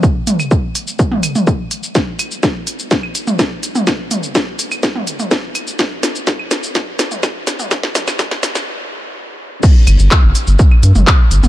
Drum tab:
CC |----------------|----------------|----------------|----------------|
HH |--x---x---x---x-|--x---x---x---x-|--x---x---x---x-|--x---x---x---x-|
SH |x-xxx-xxx-xxx-xx|x-xxx-xxx-xxx-xx|x-xxx-xxx-xxx-xx|x-xxx-xxx-xxx-xx|
CL |---x------x-----|--x------x------|x------x------x-|-----x------x---|
CP |----------------|----------------|----------------|----------------|
SD |----------------|o---o---o---o---|o---o---o---o---|o-o-o-o-o-o-o-o-|
T2 |--o------o-o----|-----------o---o|--o------o-o----|-----------o---o|
BD |o---o---o---o---|o---o---o---o---|o---o---o---o---|o---o---o---o---|

CC |----------------|x---------------|
HH |--x---x---------|--x---x---x---x-|
SH |x-xxx-xx--------|x-xxx-xxx-xxx-xx|
CL |---x------------|--x------x------|
CP |----------------|----x-------x---|
SD |oooooooo--------|----------------|
T2 |--o-------------|-----------o---o|
BD |o---o-----------|o---o---o---o---|